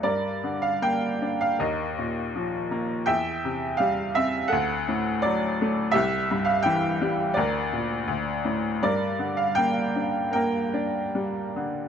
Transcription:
<<
  \new Staff \with { instrumentName = "Upright piano" } { \time 4/4 \key g \minor \tempo 4 = 82 << { d''8. f''16 g''8. f''16 ees''4. r8 | g''4 f''8 e''8 fis''4 d''8. r16 | e''8. f''16 g''4 d''4. r8 | d''8. f''16 g''4 g''4. r8 | } \\ { bes'2 bes'2 | e''2 a'2 | g'2 bes'4. r8 | bes'2 bes'2 | } >> }
  \new Staff \with { instrumentName = "Upright piano" } { \clef bass \time 4/4 \key g \minor g,8 d8 bes8 d'8 ees,8 bes,8 f8 bes8 | e,8 c8 g8 c'8 d,8 a,8 fis8 a8 | c,8 g,8 e8 g8 d,8 bes,8 d,8 a,8 | g,8 d8 bes8 d'8 bes8 d'8 g8 d8 | }
>>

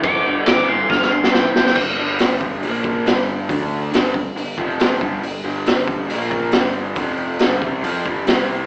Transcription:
<<
  \new Staff \with { instrumentName = "Lead electric guitar" } { \time 4/4 \key g \minor \tempo 4 = 138 d'''8 r8 d'''8 c'''8 f''8 c'''8 g''4 | r1 | r1 | r1 |
r1 | }
  \new Staff \with { instrumentName = "Overdriven electric guitar" } { \clef bass \time 4/4 \key g \minor <g, d>8 <g, d>8 <g, e>8 <g, e>8 <g, d>8 <g, d>8 <g, e>8 <g, e>8 | <g, d>8 <g, d g>4. <bes, f bes>4 <g, d g>4 | <d a d'>4 <g, d g>8 <g, d>8 <g, d>8 <f, c f>4 <g, d g>8 | <g, d>8 <g, d g>4. <bes, f bes>4 <g, d g>4 |
<f, c f>4 <g, d g>8 <c g c'>8 <f c' f'>8 <g, d g>8 <c g c'>4 | }
  \new Staff \with { instrumentName = "Picked electric bass" } { \clef bass \time 4/4 \key g \minor g,,8 g,,8 g,,8 g,,8 g,,8 g,,8 c,8 bes,,8 | g,,8 g,,4. bes,,4 g,,4 | d,4 g,,8 g,,8 g,,8 f,,4 g,,8 | g,,8 g,,4. bes,,4 g,,4 |
f,,4 g,,8 c,8 f,8 g,,8 c,4 | }
  \new DrumStaff \with { instrumentName = "Drums" } \drummode { \time 4/4 <cymc bd>4 <cymc sn>4 <bd sn>16 sn8 sn16 sn8 sn16 sn16 | <cymc bd>4 <hho sn>8 bd8 hho8 bd8 <hho sn>4 | <hho bd>4 <hho sn>8 bd8 hho8 bd8 <hho sn>8 bd8 | hho4 <hho sn>8 bd8 hho8 bd8 <hho sn>4 |
<hho bd>4 <hho sn>8 bd8 hho8 bd8 <hho sn>4 | }
>>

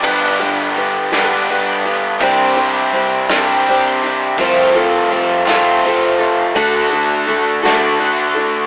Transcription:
<<
  \new Staff \with { instrumentName = "Steel-string acoustic guitar" } { \time 6/8 \key g \major \tempo 4. = 55 <g, d g b d' g'>8 <g b d' g'>8 <g b d' g'>8 <g, d g b d' g'>8 <g b d' g'>8 <g b d' g'>8 | <c g c' d' g'>8 <c' d' g'>8 <g c' d' g'>8 <c g c' d' g'>8 <g c' d' g'>8 <c' d' g'>8 | <c f c' f' a'>8 <c' f' a'>8 <f c' f' a'>8 <c f c' f' a'>8 <f c' f' a'>8 <c' f' a'>8 | <d a d' fis' a'>8 <d' fis' a'>8 <a d' fis' a'>8 <d a d' fis' a'>8 <a d' fis' a'>8 <d' fis' a'>8 | }
  \new Staff \with { instrumentName = "Overdriven electric guitar" } { \time 6/8 \key g \major <g, d g b d' g'>4. <g, d g b d' g'>4. | <c g c' d' g'>4. <c g c' d' g'>4. | <c f a c' f'>4. <c f a c' f'>4. | <d a d' fis'>4. <d a d' fis'>4. | }
  \new Staff \with { instrumentName = "Fingered electric bass" } { \clef bass \time 6/8 \key g \major g,,2 r4 | c,4. c,4. | c,2 r4 | d,4. d,4. | }
  \new DrumStaff \with { instrumentName = "Drums" } \drummode { \time 6/8 <cymc bd>8 hh8 hh8 <hh sn>8 hh8 hh8 | <hh bd>8 hh8 hh8 <hh sn>8 hh8 hh8 | <hh bd>8 hh8 hh8 <hh sn>8 hh8 hh8 | <hh bd>8 hh8 <hh bd>8 <hh sn>8 hh8 hh8 | }
>>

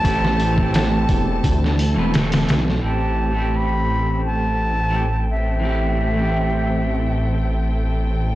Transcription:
<<
  \new Staff \with { instrumentName = "Flute" } { \time 4/4 \key a \minor \tempo 4 = 86 a''2. r4 | a''4 b''4 a''4. e''8~ | e''2.~ e''8 r8 | }
  \new Staff \with { instrumentName = "String section" } { \time 4/4 \key a \minor <c' a' a''>1 | <c' a' g''>1~ | <c' a' g''>1 | }
  \new Staff \with { instrumentName = "Clean electric guitar" } { \time 4/4 \key a \minor <e a c' g'>8. <e a c' g'>2 <e a c' b'>16 <e a c' a'>4 | <e a c' g'>8. <e a c' g'>2~ <e a c' g'>16 <e a c' g'>16 r8. | <e a c' g'>8. <e a c' g'>2.~ <e a c' g'>16 | }
  \new Staff \with { instrumentName = "Detuned saw bass" } { \clef bass \time 4/4 \key a \minor a,,4. e,,8 d,8. e,,8. b,,8 | a,,1~ | a,,1 | }
  \new DrumStaff \with { instrumentName = "Drums" } \drummode { \time 4/4 <hho bd>16 sn16 hho16 bd16 <hho sn>8 <hho bd>8 <hho bd>16 sn16 hho8 <hho sn>16 <hho sn>16 <hho sn>16 sn16 | r4 r4 r4 r4 | r4 r4 r4 r4 | }
>>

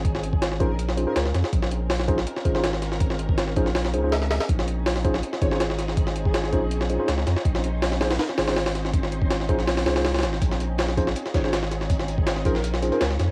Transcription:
<<
  \new Staff \with { instrumentName = "Digital synth lead" } { \time 4/4 \key bes \minor \tempo 4 = 162 r4. bes'16 bes'16 r8. bes'16 bes'16 r8. | r1 | r1 | r2 r8 des''16 des''16 r4 |
r8. aes'4. r4. r16 | r1 | r1 | r2 r8 des''16 des''16 r4 |
r4. bes'16 bes'16 r8. bes'16 bes'16 r8. | }
  \new Staff \with { instrumentName = "String machine" } { \time 4/4 \key bes \minor << { aes'1 | bes'1~ | bes'1 | aes'1~ |
aes'1 | c''1~ | c''1 | aes'1~ |
aes'1 | } \\ { <c' des' ees'>1~ | <c' des' ees'>1~ | <c' des' ees'>1~ | <c' des' ees'>1~ |
<c' des' ees'>1~ | <c' des' ees'>1~ | <c' des' ees'>1~ | <c' des' ees'>1~ |
<c' des' ees'>1 | } >> }
  \new Staff \with { instrumentName = "Tine electric piano" } { \time 4/4 \key bes \minor r4. <des' ees' f' aes' c''>16 r8. <des' ees' f' aes' c''>16 <des' ees' f' aes' c''>16 r4 | r4. <des' ees' f' aes' c''>16 r8. <des' ees' f' aes' c''>16 <des' ees' f' aes' c''>16 r4 | r4. <des' ees' f' aes' c''>16 r8. <des' ees' f' aes' c''>16 <des' ees' f' aes' c''>16 r4 | r4. <des' ees' f' aes' c''>16 r8. <des' ees' f' aes' c''>16 <des' ees' f' aes' c''>16 r4 |
r4. <des' ees' f' aes' c''>16 r8. <des' ees' f' aes' c''>16 <des' ees' f' aes' c''>16 r4 | r4. <des' ees' f' aes' c''>16 r8. <des' ees' f' aes' c''>16 <des' ees' f' aes' c''>16 r4 | r4. <des' ees' f' aes' c''>16 r8. <des' ees' f' aes' c''>16 <des' ees' f' aes' c''>16 r4 | r4. <des' ees' f' aes' c''>16 r8. <des' ees' f' aes' c''>16 <des' ees' f' aes' c''>16 r4 |
r4. <des' ees' f' aes' c''>16 r8. <des' ees' f' aes' c''>16 <des' ees' f' aes' c''>16 r4 | }
  \new Staff \with { instrumentName = "Sub bass" } { \clef bass \time 4/4 \key bes \minor aes,,4. bes,,4 r8 des,8 f,8 | bes,,2 r8 aes,,4.~ | aes,,4. bes,,4 des,4 r8 | bes,,2 r8 aes,,4.~ |
aes,,4. bes,,4 r8 des,8 f,8 | bes,,2 r8 aes,,4.~ | aes,,4. bes,,4 c,4 aes,,8 | bes,,2 r8 aes,,4.~ |
aes,,4. bes,,4 r8 des,8 f,8 | }
  \new DrumStaff \with { instrumentName = "Drums" } \drummode { \time 4/4 <hh bd>16 sn16 hh16 bd16 <hh sn>16 sn16 <hh bd>8 hh16 sn16 hh8 <hh sn>16 sn16 <hh sn>16 sn16 | <hh bd>16 sn16 hh8 <hho sn>16 sn16 <hh bd>16 sn16 hh16 sn16 <hh bd>16 sn16 <hh sn>16 sn16 <hh sn>16 sn16 | <hh bd>16 sn16 hh16 bd16 <hh sn>16 sn16 <hh bd>16 sn16 <hho sn>16 sn16 hh8 <hho sn>16 sn16 <hho sn>16 <hho sn>16 | <hh bd>16 sn16 hh8 <hho sn>16 sn16 <hh bd>16 sn16 hh16 sn16 <hh bd>16 sn16 <hh sn>16 sn16 <hh sn>16 sn16 |
<hh bd>16 sn16 hh16 bd16 <hh sn>16 sn16 <hh bd>8 hh16 sn16 hh8 <hh sn>16 sn16 <hh sn>16 sn16 | <hh bd>16 sn16 hh8 <hho sn>16 sn16 <hho sn>16 <hho sn>16 <hho sn>16 sn16 <hho sn>16 <hho sn>16 <hho sn>16 <hho sn>16 <hh sn>16 sn16 | <hh bd>16 sn16 hh16 bd16 <hh sn>16 sn16 <hh bd>16 sn16 <hho sn>16 <hho sn>16 <hho sn>16 <hho sn>16 <hho sn>16 <hho sn>32 <hho sn>32 <hh sn>16 sn16 | <hh bd>16 sn16 hh8 <hh hho sn>16 <hh sn>16 <hh bd>16 sn16 hh16 <hh sn>16 <hh bd sn>16 sn16 <hh sn>16 sn16 <hh sn>16 <hh sn>16 |
<hh bd>16 sn16 hh16 bd16 <hh sn>16 sn16 <hh bd>16 sn16 hh16 sn16 hh16 hh16 <hh sn>16 sn16 <hh sn>8 | }
>>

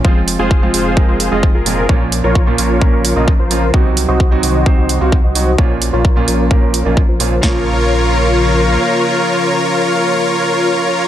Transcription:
<<
  \new Staff \with { instrumentName = "Supersaw synth" } { \time 4/4 \key bes \minor \tempo 4 = 130 <f' aes' c''>16 r8 <f' aes' c''>8. <f' aes' c''>8. <f' aes' c''>8 <f' aes' ees''>16 r16 <f' aes' bes'>8. | <f' bes' des''>16 r8 <f' bes' des''>8. <f' bes' des''>8. <f' bes' des''>8 <f' bes' ees''>16 r16 <f' bes' c''>8. | <ges' c'' ees''>16 r8 <ges' c'' ees''>8. <ges' c'' ees''>8. <ges' c'' ees''>8 <ges' c'' f''>16 r16 <ges' c'' ees''>8. | <f' bes' des''>16 r8 <f' bes' des''>8. <f' bes' des''>8. <f' bes' des''>8 <f' bes' ees''>16 r16 <f' bes' c''>8. |
<f' bes' des''>1~ | <f' bes' des''>1 | }
  \new Staff \with { instrumentName = "Felt piano" } { \time 4/4 \key bes \minor <f aes c' f'>8. <f aes c' f'>16 r16 <f aes c' f'>8. <f aes c' bes'>8. <f aes c' f'>16 r8 <bes, f aes c' f'>16 r16 | <bes, f bes des' f'>8. <bes, f bes des' f'>16 r16 <bes, f bes des' f'>8. <bes, f bes des' bes'>8. <bes, f bes des' f'>16 r8 <f bes des' f'>16 r16 | <c ges c' ees' ges'>8. <c ges c' ees' ges'>16 r16 <c ges c' ees' ges'>8. <c ges c' ees' c''>8. <c ges c' ees' ges'>16 r8 <ges c' ees' ges'>16 r16 | <bes, f bes des' f'>8. <bes, f bes des' f'>16 r16 <bes, f bes des' f'>8. <bes, f bes des' bes'>8. <bes, f bes des' f'>16 r8 <bes, f bes des' f'>16 r16 |
<f bes des' f'>1~ | <f bes des' f'>1 | }
  \new Staff \with { instrumentName = "Supersaw synth" } { \clef bass \time 4/4 \key bes \minor << { <f f'>1~ | <f f'>1 | <ges ges'>1 | <f f'>1 |
<des f bes f' bes'>1~ | <des f bes f' bes'>1 | } \\ { <aes, c c'>1 | <bes, des des'>1 | <c ees ees'>1 | <bes, des des'>1 |
r1 | r1 | } >> }
  \new Staff \with { instrumentName = "Sub bass" } { \clef bass \time 4/4 \key bes \minor f,,8. f,,8. f,,8. f,,8 f,,8 f,,8. | bes,,8. bes,,8. bes,,8. bes,,8 bes,,8 bes,,8. | c,8. c,8. c,8. c,8 c,8 c,8. | bes,,8. bes,,8. bes,,8. bes,,8 bes,,8 bes,,8. |
bes,,2. r4 | r1 | }
  \new DrumStaff \with { instrumentName = "Drums" } \drummode { \time 4/4 bd8 hho8 bd8 hho8 bd8 hho8 bd8 hho8 | bd8 hho8 bd8 hho8 bd8 hho8 bd8 hho8 | bd8 hho8 bd8 hho8 bd8 hho8 bd8 hho8 | bd8 hho8 bd8 hho8 bd8 hho8 bd8 hho8 |
<bd sn>4 r4 r4 r4 | r4 r4 r4 r4 | }
>>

